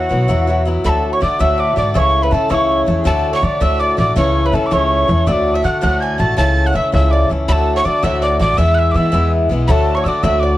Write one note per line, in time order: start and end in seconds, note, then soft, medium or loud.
0.00 0.10 E4 medium
0.00 0.11 F#4 medium
0.00 0.62 F#4 medium
0.00 0.67 F#5 medium
0.09 0.28 B1 medium
0.09 0.28 F#3 medium
0.09 0.28 B3 medium
0.09 0.29 E4 medium
0.09 0.29 F#4 medium
0.28 0.79 E2 medium
0.28 0.47 E3 medium
0.28 0.46 F#3 medium
0.28 0.47 B3 medium
0.28 0.48 E4 medium
0.28 0.48 F#4 medium
0.47 0.64 F#3 medium
0.47 0.65 B3 medium
0.47 0.66 E4 medium
0.47 0.67 F#4 medium
0.65 0.84 F#3 medium
0.65 0.85 B3 medium
0.65 0.85 E4 medium
0.65 0.84 F#4 medium
0.84 1.21 D2 medium
0.84 1.18 D2 medium
0.84 1.21 A2 medium
0.84 1.19 D3 medium
0.84 1.21 A3 medium
0.84 1.22 D4 medium
0.84 1.22 F#4 medium
0.84 1.10 A4 medium
0.84 1.13 A4 medium
0.84 0.90 B5 medium
0.89 1.14 A5 loud
1.13 1.21 C#5 medium
1.13 1.22 C#5 medium
1.13 1.22 C#6 medium
1.20 1.39 D3 medium
1.20 1.38 D3 medium
1.20 1.39 A3 medium
1.20 1.40 D4 medium
1.20 1.40 F#4 medium
1.20 1.39 D5 medium
1.20 1.41 D5 medium
1.20 1.42 D6 medium
1.39 1.76 D2 medium
1.39 1.73 D2 loud
1.39 1.77 A2 medium
1.39 1.75 D3 medium
1.39 1.77 A3 medium
1.39 1.77 D4 medium
1.39 1.78 F#4 medium
1.39 1.58 E5 medium
1.39 1.78 E5 medium
1.39 1.61 E6 medium
1.58 1.77 D5 medium
1.58 1.77 D6 medium
1.76 1.93 G#2 medium
1.76 1.95 D3 medium
1.76 1.94 A3 medium
1.76 1.96 D4 medium
1.76 1.96 F#4 medium
1.76 1.96 D5 medium
1.76 1.96 D6 medium
1.94 2.28 C#2 loud
1.94 2.32 C#3 medium
1.94 2.30 E3 medium
1.94 2.32 A3 medium
1.94 2.32 C#4 medium
1.94 2.33 E4 medium
1.94 2.24 C#5 medium
1.94 2.22 C#5 medium
1.94 2.00 E6 loud
1.99 2.24 C#6 loud
2.23 2.33 B4 medium
2.23 2.32 B4 medium
2.23 2.34 B5 medium
2.31 2.49 C#3 medium
2.31 2.49 E3 medium
2.31 2.49 A3 medium
2.31 2.50 C#4 medium
2.31 2.50 E4 medium
2.31 2.51 A4 medium
2.31 2.50 A4 medium
2.31 2.52 A5 medium
2.49 2.84 C#2 medium
2.49 2.87 C#3 medium
2.49 2.85 E3 medium
2.49 2.87 A3 medium
2.49 2.88 C#4 medium
2.49 2.88 E4 medium
2.49 3.00 C#5 medium
2.49 3.03 C#5 medium
2.49 2.55 E6 medium
2.54 2.82 C#6 medium
2.86 3.04 E2 loud
2.86 3.05 E3 medium
2.86 3.05 A3 medium
2.86 3.06 C#4 medium
2.86 3.06 E4 medium
2.99 3.06 G#4 medium
3.04 3.42 D2 medium
3.04 3.39 D2 medium
3.04 3.42 A2 medium
3.04 3.40 D3 medium
3.04 3.42 A3 medium
3.04 3.43 D4 loud
3.04 3.43 F#4 loud
3.04 3.32 A4 medium
3.04 3.35 A4 medium
3.04 3.32 A5 loud
3.33 3.43 C#5 medium
3.33 3.59 C#5 medium
3.33 3.45 C#6 medium
3.41 3.60 D3 medium
3.41 3.59 D3 loud
3.41 3.61 A3 medium
3.41 3.61 D4 medium
3.41 3.61 F#4 medium
3.41 3.62 D5 medium
3.41 3.63 D6 medium
3.60 3.98 D2 medium
3.60 3.94 D2 loud
3.60 3.98 A2 medium
3.60 3.96 D3 medium
3.60 3.98 A3 medium
3.60 3.98 D4 medium
3.60 3.99 F#4 medium
3.60 3.79 E5 medium
3.60 3.81 E5 medium
3.60 3.81 E6 loud
3.80 3.97 D5 medium
3.80 4.15 D5 medium
3.80 3.98 D6 medium
3.97 4.15 A1 loud
3.97 4.16 D3 medium
3.97 4.16 A3 medium
3.97 4.17 D4 medium
3.97 4.17 F#4 medium
3.97 4.16 D5 medium
3.97 4.16 D6 medium
4.16 4.50 C#2 loud
4.16 4.53 C#3 medium
4.16 4.51 E3 medium
4.16 4.53 A3 medium
4.16 4.53 C#4 medium
4.16 4.54 E4 loud
4.16 4.42 C#5 medium
4.16 4.45 C#5 medium
4.16 4.47 C#6 loud
4.45 4.54 B4 medium
4.45 4.56 B5 medium
4.52 4.70 C#3 medium
4.52 4.70 E3 medium
4.52 4.71 A3 medium
4.52 4.71 C#4 medium
4.52 4.72 E4 medium
4.52 4.73 A4 medium
4.52 4.71 A4 medium
4.52 4.68 A5 medium
4.66 4.74 D6 medium
4.71 5.05 C#2 loud
4.71 5.08 C#3 medium
4.71 5.06 E3 medium
4.71 5.09 A3 medium
4.71 5.09 C#4 medium
4.71 5.09 E4 medium
4.71 5.24 C#5 medium
4.71 5.29 C#6 loud
5.08 5.25 E2 loud
5.08 5.27 E3 medium
5.08 5.27 A3 medium
5.08 5.28 C#4 medium
5.08 5.28 E4 medium
5.26 5.64 D2 medium
5.26 5.60 D2 loud
5.26 5.64 A2 medium
5.26 5.62 D3 medium
5.26 5.63 A3 medium
5.26 5.64 D4 medium
5.26 5.65 F#4 medium
5.26 5.53 D5 medium
5.26 5.56 D5 medium
5.26 5.33 E6 loud
5.32 5.56 D6 loud
5.54 5.64 E5 medium
5.54 5.64 E6 medium
5.63 5.81 D3 medium
5.63 5.81 A3 medium
5.63 5.82 D4 medium
5.63 5.82 F#4 medium
5.63 5.82 F#5 medium
5.63 5.81 F#6 medium
5.81 6.19 D2 medium
5.81 6.16 D2 loud
5.81 6.19 A2 medium
5.81 6.17 D3 medium
5.81 6.19 A3 medium
5.81 6.19 D4 medium
5.81 6.20 F#4 medium
5.81 6.00 F#5 medium
5.81 6.02 F#5 medium
5.81 6.02 F#6 loud
6.01 6.19 G#5 medium
6.01 6.22 G#6 medium
6.18 6.36 A1 loud
6.18 6.37 D3 medium
6.18 6.37 A3 medium
6.18 6.38 D4 medium
6.18 6.39 F#4 medium
6.18 6.36 A5 medium
6.18 6.37 A5 medium
6.18 6.37 A6 loud
6.37 6.71 C#2 medium
6.37 6.74 C#3 medium
6.37 6.71 E3 medium
6.37 6.73 A3 medium
6.37 6.74 C#4 medium
6.37 6.75 E4 medium
6.37 6.66 A5 loud
6.37 6.64 A5 medium
6.37 6.68 A6 loud
6.66 6.74 F#5 medium
6.66 6.75 F#5 medium
6.66 6.77 F#6 medium
6.73 6.91 C#3 medium
6.73 6.91 E3 medium
6.73 6.92 A3 medium
6.73 6.92 C#4 medium
6.73 6.93 E4 medium
6.73 6.91 E5 medium
6.73 6.92 E5 medium
6.73 6.93 E6 medium
6.92 7.26 C#2 loud
6.92 7.29 C#3 medium
6.92 7.28 E3 medium
6.92 7.29 A3 medium
6.92 7.30 C#4 medium
6.92 7.30 E4 medium
6.92 7.12 E5 medium
6.92 7.10 E5 medium
6.92 7.13 E6 loud
7.11 7.29 D5 medium
7.11 7.30 D6 medium
7.29 7.46 C#2 medium
7.29 7.48 E3 medium
7.29 7.49 A3 medium
7.29 7.49 C#4 medium
7.29 7.50 E4 medium
7.48 7.85 D2 medium
7.48 7.81 D2 medium
7.48 7.85 A2 medium
7.48 7.83 D3 medium
7.48 7.84 A3 medium
7.48 7.85 D4 medium
7.48 7.86 F#4 loud
7.48 7.77 A4 medium
7.48 7.74 A4 medium
7.48 7.54 B5 loud
7.53 7.74 A5 loud
7.76 7.84 C#5 medium
7.76 7.85 C#5 medium
7.76 7.87 C#6 medium
7.84 8.03 D3 medium
7.84 8.02 D3 medium
7.84 8.03 A3 medium
7.84 8.03 D4 medium
7.84 8.04 F#4 medium
7.84 8.02 D5 medium
7.84 8.04 D5 medium
7.84 8.05 D6 medium
8.03 8.40 D2 medium
8.03 8.36 D2 loud
8.03 8.40 A2 medium
8.03 8.38 D3 medium
8.03 8.40 A3 medium
8.03 8.40 D4 medium
8.03 8.41 F#4 medium
8.03 8.22 E5 medium
8.03 8.23 E5 medium
8.03 8.22 E6 loud
8.22 8.39 D5 medium
8.22 8.40 D5 medium
8.22 8.39 D6 medium
8.39 8.57 A1 medium
8.39 8.57 D3 medium
8.39 8.58 A3 medium
8.39 8.59 D4 medium
8.39 8.60 F#4 medium
8.39 8.59 D5 medium
8.39 8.60 D5 medium
8.39 8.59 D6 medium
8.58 8.91 E2 loud
8.58 8.93 E3 medium
8.58 8.94 G#3 medium
8.58 8.95 B3 medium
8.58 8.96 E4 medium
8.58 9.28 E5 medium
8.58 9.29 E5 medium
8.58 8.76 E6 loud
8.75 8.80 F#6 loud
8.79 8.93 E6 loud
8.92 9.11 E3 medium
8.92 9.12 E3 medium
8.92 9.12 G#3 medium
8.92 8.97 D6 loud
8.96 9.13 B3 medium
8.96 9.13 E4 medium
8.96 9.32 E6 loud
9.12 9.46 E2 medium
9.12 9.48 E3 medium
9.12 9.50 G#3 medium
9.12 9.51 B3 loud
9.12 9.51 E4 loud
9.49 9.67 B1 medium
9.49 9.68 E3 medium
9.49 9.69 G#3 medium
9.49 9.69 B3 medium
9.49 9.70 E4 medium
9.67 10.05 D2 medium
9.67 10.02 D2 loud
9.67 10.06 A2 medium
9.67 10.04 D3 medium
9.67 10.06 A3 medium
9.67 10.06 D4 medium
9.67 10.06 F#4 medium
9.67 9.94 A4 medium
9.67 9.98 A4 medium
9.67 9.96 A5 medium
9.67 9.72 B5 medium
9.95 10.05 C#5 medium
9.95 10.06 C#5 medium
9.95 10.06 C#6 medium
10.04 10.23 D3 medium
10.04 10.22 D3 medium
10.04 10.23 A3 medium
10.04 10.24 D4 medium
10.04 10.24 F#4 medium
10.04 10.23 D5 medium
10.04 10.25 D5 medium
10.04 10.10 E6 medium
10.09 10.24 D6 medium
10.23 10.58 D2 medium
10.23 10.57 D2 loud
10.23 10.58 A2 medium
10.23 10.58 D3 medium
10.23 10.58 A3 medium
10.23 10.58 D4 loud
10.23 10.58 F#4 medium
10.23 10.43 E5 medium
10.23 10.41 E6 medium
10.40 10.58 D5 medium
10.40 10.58 D6 medium